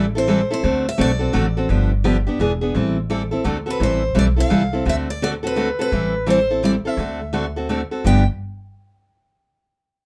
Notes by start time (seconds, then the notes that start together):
Already playing: A1
0.15 C4 E4 A4 C5
0.27 E3 G3 C4 E4 A4
0.51 C4 E4 A4 C5
0.63 D2 D3 A3 C4 F#4 A4
0.89 E5
0.98 B1 D3 A3 C4 F#4 A4 D5
1.19 C4 F#4 A4
1.33 A1 D3 A3 C4 F#4 A4
1.57 C4 F#4 A4
1.69 G1 D3 F3 B3 D4 G4
2.04 D3 F3 B3 D4 G4
2.27 B3 D4 G4
2.39 E1 E3 B3 D4 G#4
2.61 B3 D4 G#4
2.75 A1 E3 G3 C4 E4 A4
3.10 E3 G3 C4 E4 A4
3.31 C4 E4 A4
3.44 D2 D3 A3 C4 F#4 A4
3.66 C4 F#4 A4
3.70 B4
3.80 A1 E3 G3 C4 E4 A4 C5
4.15 B1 E3 G3 C4 E4 A4
4.19 D5
4.36 C4 E4 A4 F5
4.50 C2 E3 G3 C4 E4 A4
4.73 C4 E4 A4
4.85 D2 D3 A3 C4 F#4 A4
4.89 E5
5.10 D5
5.22 D3 A3 C4 F#4 A4 D5
5.43 C4 F#4 A4 B4
5.56 D3 A3 C4 F#4 A4
5.79 C4 F#4 A4 B4
5.92 A1 E3 G3 C4 E4 A4
6.26 E3 G3 C4 E4 A4 C5
6.50 C4 E4 A4
6.63 E3 G3 C4 E4 A4 D5
6.85 C4 E4 A4 E5
6.97 D2 D3 A3 C4 F#4 A4
7.33 D3 A3 C4 F#4 A4
7.56 C4 F#4 A4
7.69 D3 A3 C4 F#4 A4
7.91 C4 F#4 A4
8.04 G1 G2 D3 F3 B3 D4 G4 G5